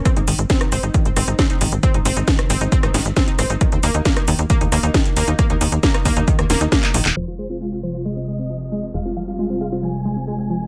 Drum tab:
HH |xxoxxxoxxxoxxxox|xxoxxxoxxxoxxxox|xxoxxxoxxxoxxxox|xxoxxxoxxxoxxxox|
SH |xxxxxxxxxxxxxxxx|xxxxxxxxxxxxxxxx|xxxxxxxxxxxxxxxx|xxxxxxxxxxxxxxxx|
CP |----------------|----------------|----------------|-------------x-x|
SD |r---or----r-o---|----or---ro-o-r-|r---or----r-o---|r---or---ro-o---|
BD |o---o---o---o---|o---o---o---o---|o---o---o---o---|o---o-o-o---o---|

HH |----------------|----------------|
SH |----------------|----------------|
CP |----------------|----------------|
SD |----------------|----------------|
BD |----------------|----------------|